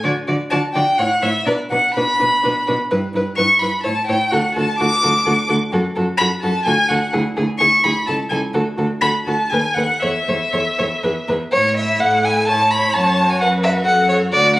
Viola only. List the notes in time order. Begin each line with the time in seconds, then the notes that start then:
0.03 F#4
0.28 F#4
0.52 F#4
0.75 F#4
1.00 E4
1.23 E4
1.46 D4
1.71 D4
1.97 D4
2.19 D4
2.43 D4
2.67 D4
2.91 E4
3.14 E4
3.38 E4
3.61 E4
3.84 E4
4.08 E4
4.31 F#4
4.56 F#4
4.80 F#4
5.03 F#4
5.26 F#4
5.49 F#4
5.73 F#4
5.97 F#4
6.20 F#4
6.43 F#4
6.67 F#4
6.89 F#4
7.13 E4
7.36 E4
7.60 E4
7.83 E4
8.06 E4
8.31 E4
8.54 F#4
8.77 F#4
9.02 F#4
9.27 F#4
9.51 A4
9.76 A4
10.03 A4
10.28 A4
10.54 A4
10.79 A4
11.04 G#4
11.30 G#4
12.01 A4
12.49 C#5
13.42 B4
13.87 A4
14.33 F#4